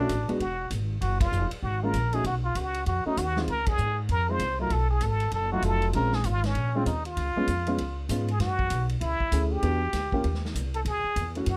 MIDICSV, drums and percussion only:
0, 0, Header, 1, 2, 480
1, 0, Start_track
1, 0, Tempo, 307377
1, 1594, Time_signature, 4, 2, 24, 8
1, 18065, End_track
2, 0, Start_track
2, 0, Title_t, "Drums"
2, 144, Note_on_c, 9, 44, 51
2, 144, Note_on_c, 9, 51, 63
2, 148, Note_on_c, 9, 36, 17
2, 300, Note_off_c, 9, 44, 0
2, 300, Note_off_c, 9, 51, 0
2, 304, Note_off_c, 9, 36, 0
2, 450, Note_on_c, 9, 51, 36
2, 606, Note_off_c, 9, 51, 0
2, 627, Note_on_c, 9, 36, 20
2, 628, Note_on_c, 9, 51, 49
2, 783, Note_off_c, 9, 36, 0
2, 784, Note_off_c, 9, 51, 0
2, 1101, Note_on_c, 9, 44, 49
2, 1101, Note_on_c, 9, 51, 58
2, 1104, Note_on_c, 9, 36, 22
2, 1257, Note_off_c, 9, 44, 0
2, 1257, Note_off_c, 9, 51, 0
2, 1260, Note_off_c, 9, 36, 0
2, 1584, Note_on_c, 9, 36, 25
2, 1585, Note_on_c, 9, 51, 60
2, 1740, Note_off_c, 9, 36, 0
2, 1741, Note_off_c, 9, 51, 0
2, 1883, Note_on_c, 9, 36, 83
2, 1883, Note_on_c, 9, 51, 76
2, 2039, Note_off_c, 9, 36, 0
2, 2040, Note_off_c, 9, 51, 0
2, 2064, Note_on_c, 9, 44, 52
2, 2220, Note_off_c, 9, 44, 0
2, 2359, Note_on_c, 9, 51, 56
2, 2515, Note_off_c, 9, 51, 0
2, 2540, Note_on_c, 9, 36, 21
2, 2697, Note_off_c, 9, 36, 0
2, 3022, Note_on_c, 9, 44, 54
2, 3022, Note_on_c, 9, 51, 60
2, 3024, Note_on_c, 9, 36, 22
2, 3178, Note_off_c, 9, 44, 0
2, 3178, Note_off_c, 9, 51, 0
2, 3181, Note_off_c, 9, 36, 0
2, 3320, Note_on_c, 9, 51, 42
2, 3476, Note_off_c, 9, 51, 0
2, 3503, Note_on_c, 9, 51, 58
2, 3505, Note_on_c, 9, 36, 20
2, 3659, Note_off_c, 9, 51, 0
2, 3661, Note_off_c, 9, 36, 0
2, 3985, Note_on_c, 9, 44, 44
2, 3985, Note_on_c, 9, 51, 60
2, 3988, Note_on_c, 9, 36, 18
2, 4141, Note_off_c, 9, 44, 0
2, 4141, Note_off_c, 9, 51, 0
2, 4144, Note_off_c, 9, 36, 0
2, 4284, Note_on_c, 9, 51, 43
2, 4440, Note_off_c, 9, 51, 0
2, 4468, Note_on_c, 9, 51, 49
2, 4471, Note_on_c, 9, 36, 20
2, 4625, Note_off_c, 9, 51, 0
2, 4627, Note_off_c, 9, 36, 0
2, 4954, Note_on_c, 9, 36, 22
2, 4954, Note_on_c, 9, 44, 62
2, 4954, Note_on_c, 9, 51, 59
2, 5110, Note_off_c, 9, 36, 0
2, 5110, Note_off_c, 9, 44, 0
2, 5110, Note_off_c, 9, 51, 0
2, 5254, Note_on_c, 9, 38, 45
2, 5410, Note_off_c, 9, 38, 0
2, 5428, Note_on_c, 9, 51, 51
2, 5434, Note_on_c, 9, 36, 22
2, 5584, Note_off_c, 9, 51, 0
2, 5590, Note_off_c, 9, 36, 0
2, 5721, Note_on_c, 9, 51, 74
2, 5729, Note_on_c, 9, 36, 70
2, 5877, Note_off_c, 9, 51, 0
2, 5886, Note_off_c, 9, 36, 0
2, 5900, Note_on_c, 9, 44, 55
2, 6056, Note_off_c, 9, 44, 0
2, 6383, Note_on_c, 9, 51, 51
2, 6387, Note_on_c, 9, 36, 19
2, 6539, Note_off_c, 9, 51, 0
2, 6544, Note_off_c, 9, 36, 0
2, 6861, Note_on_c, 9, 44, 42
2, 6861, Note_on_c, 9, 51, 62
2, 6866, Note_on_c, 9, 36, 25
2, 7018, Note_off_c, 9, 44, 0
2, 7018, Note_off_c, 9, 51, 0
2, 7022, Note_off_c, 9, 36, 0
2, 7342, Note_on_c, 9, 51, 56
2, 7344, Note_on_c, 9, 36, 23
2, 7498, Note_off_c, 9, 51, 0
2, 7500, Note_off_c, 9, 36, 0
2, 7817, Note_on_c, 9, 44, 46
2, 7817, Note_on_c, 9, 51, 56
2, 7825, Note_on_c, 9, 36, 20
2, 7973, Note_off_c, 9, 44, 0
2, 7973, Note_off_c, 9, 51, 0
2, 7981, Note_off_c, 9, 36, 0
2, 8119, Note_on_c, 9, 51, 42
2, 8276, Note_off_c, 9, 51, 0
2, 8298, Note_on_c, 9, 51, 52
2, 8306, Note_on_c, 9, 36, 21
2, 8455, Note_off_c, 9, 51, 0
2, 8462, Note_off_c, 9, 36, 0
2, 8782, Note_on_c, 9, 44, 50
2, 8782, Note_on_c, 9, 51, 64
2, 8786, Note_on_c, 9, 36, 23
2, 8938, Note_off_c, 9, 44, 0
2, 8938, Note_off_c, 9, 51, 0
2, 8942, Note_off_c, 9, 36, 0
2, 9085, Note_on_c, 9, 51, 40
2, 9241, Note_off_c, 9, 51, 0
2, 9263, Note_on_c, 9, 51, 57
2, 9268, Note_on_c, 9, 36, 18
2, 9419, Note_off_c, 9, 51, 0
2, 9424, Note_off_c, 9, 36, 0
2, 9565, Note_on_c, 9, 38, 46
2, 9721, Note_off_c, 9, 38, 0
2, 9740, Note_on_c, 9, 44, 51
2, 9740, Note_on_c, 9, 51, 56
2, 9749, Note_on_c, 9, 36, 21
2, 9896, Note_off_c, 9, 44, 0
2, 9896, Note_off_c, 9, 51, 0
2, 9905, Note_off_c, 9, 36, 0
2, 10050, Note_on_c, 9, 51, 44
2, 10053, Note_on_c, 9, 38, 40
2, 10206, Note_off_c, 9, 51, 0
2, 10209, Note_off_c, 9, 38, 0
2, 10225, Note_on_c, 9, 51, 52
2, 10230, Note_on_c, 9, 36, 21
2, 10382, Note_off_c, 9, 51, 0
2, 10386, Note_off_c, 9, 36, 0
2, 10713, Note_on_c, 9, 36, 21
2, 10714, Note_on_c, 9, 44, 49
2, 10714, Note_on_c, 9, 51, 60
2, 10869, Note_off_c, 9, 36, 0
2, 10870, Note_off_c, 9, 44, 0
2, 10870, Note_off_c, 9, 51, 0
2, 11011, Note_on_c, 9, 51, 40
2, 11167, Note_off_c, 9, 51, 0
2, 11193, Note_on_c, 9, 51, 57
2, 11195, Note_on_c, 9, 36, 25
2, 11349, Note_off_c, 9, 51, 0
2, 11351, Note_off_c, 9, 36, 0
2, 11672, Note_on_c, 9, 44, 49
2, 11672, Note_on_c, 9, 51, 57
2, 11675, Note_on_c, 9, 36, 20
2, 11829, Note_off_c, 9, 44, 0
2, 11829, Note_off_c, 9, 51, 0
2, 11831, Note_off_c, 9, 36, 0
2, 11970, Note_on_c, 9, 51, 40
2, 12126, Note_off_c, 9, 51, 0
2, 12154, Note_on_c, 9, 51, 54
2, 12155, Note_on_c, 9, 36, 16
2, 12311, Note_off_c, 9, 51, 0
2, 12312, Note_off_c, 9, 36, 0
2, 12635, Note_on_c, 9, 36, 20
2, 12635, Note_on_c, 9, 44, 58
2, 12635, Note_on_c, 9, 51, 59
2, 12791, Note_off_c, 9, 36, 0
2, 12792, Note_off_c, 9, 44, 0
2, 12792, Note_off_c, 9, 51, 0
2, 12935, Note_on_c, 9, 51, 40
2, 13092, Note_off_c, 9, 51, 0
2, 13113, Note_on_c, 9, 51, 55
2, 13114, Note_on_c, 9, 36, 21
2, 13116, Note_on_c, 9, 38, 35
2, 13269, Note_off_c, 9, 51, 0
2, 13270, Note_off_c, 9, 36, 0
2, 13272, Note_off_c, 9, 38, 0
2, 13414, Note_on_c, 9, 36, 55
2, 13570, Note_off_c, 9, 36, 0
2, 13587, Note_on_c, 9, 44, 51
2, 13587, Note_on_c, 9, 51, 61
2, 13592, Note_on_c, 9, 36, 19
2, 13743, Note_off_c, 9, 44, 0
2, 13743, Note_off_c, 9, 51, 0
2, 13748, Note_off_c, 9, 36, 0
2, 13888, Note_on_c, 9, 51, 41
2, 14044, Note_off_c, 9, 51, 0
2, 14070, Note_on_c, 9, 51, 59
2, 14073, Note_on_c, 9, 36, 18
2, 14227, Note_off_c, 9, 51, 0
2, 14229, Note_off_c, 9, 36, 0
2, 14371, Note_on_c, 9, 36, 41
2, 14527, Note_off_c, 9, 36, 0
2, 14552, Note_on_c, 9, 44, 57
2, 14552, Note_on_c, 9, 51, 63
2, 14553, Note_on_c, 9, 36, 19
2, 14708, Note_off_c, 9, 44, 0
2, 14708, Note_off_c, 9, 51, 0
2, 14709, Note_off_c, 9, 36, 0
2, 15030, Note_on_c, 9, 51, 57
2, 15032, Note_on_c, 9, 36, 17
2, 15187, Note_off_c, 9, 51, 0
2, 15188, Note_off_c, 9, 36, 0
2, 15504, Note_on_c, 9, 44, 54
2, 15504, Note_on_c, 9, 51, 62
2, 15507, Note_on_c, 9, 38, 33
2, 15510, Note_on_c, 9, 36, 24
2, 15660, Note_off_c, 9, 44, 0
2, 15660, Note_off_c, 9, 51, 0
2, 15663, Note_off_c, 9, 38, 0
2, 15666, Note_off_c, 9, 36, 0
2, 15809, Note_on_c, 9, 36, 49
2, 15965, Note_off_c, 9, 36, 0
2, 15988, Note_on_c, 9, 51, 49
2, 15990, Note_on_c, 9, 36, 21
2, 16144, Note_off_c, 9, 51, 0
2, 16147, Note_off_c, 9, 36, 0
2, 16152, Note_on_c, 9, 38, 28
2, 16309, Note_off_c, 9, 38, 0
2, 16321, Note_on_c, 9, 38, 40
2, 16473, Note_on_c, 9, 36, 21
2, 16477, Note_off_c, 9, 38, 0
2, 16481, Note_on_c, 9, 44, 65
2, 16481, Note_on_c, 9, 51, 61
2, 16630, Note_off_c, 9, 36, 0
2, 16637, Note_off_c, 9, 44, 0
2, 16637, Note_off_c, 9, 51, 0
2, 16772, Note_on_c, 9, 51, 41
2, 16928, Note_off_c, 9, 51, 0
2, 16949, Note_on_c, 9, 36, 22
2, 16950, Note_on_c, 9, 51, 60
2, 17105, Note_off_c, 9, 36, 0
2, 17106, Note_off_c, 9, 51, 0
2, 17429, Note_on_c, 9, 36, 21
2, 17429, Note_on_c, 9, 44, 54
2, 17429, Note_on_c, 9, 51, 61
2, 17585, Note_off_c, 9, 36, 0
2, 17585, Note_off_c, 9, 44, 0
2, 17585, Note_off_c, 9, 51, 0
2, 17726, Note_on_c, 9, 51, 40
2, 17883, Note_off_c, 9, 51, 0
2, 17897, Note_on_c, 9, 51, 64
2, 17905, Note_on_c, 9, 36, 25
2, 18053, Note_off_c, 9, 51, 0
2, 18062, Note_off_c, 9, 36, 0
2, 18065, End_track
0, 0, End_of_file